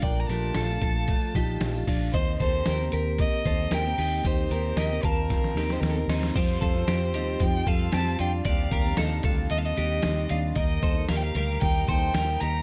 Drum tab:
CC |----------------|----------------|----------------|x---------------|
HH |x-x-x-x-x-x-x-o-|x-x-x-x-x-x-x-o-|x-x-x-x-x-x-x-o-|x-x-x-x-x-x-x-x-|
SD |----o-------o---|----o-------o---|----o---ooooo-oo|----o-------o---|
BD |o-----o-o-o---o-|o-o-----o-o-----|o-----o-o-------|o-o-----o-o-----|

CC |----------------|----------------|
HH |x-x-x-x-x-x-x-x-|x-x-x-x-x-x-x-x-|
SD |----o-------o---|----o-------o---|
BD |o-o---o---------|o-o-----o-o-----|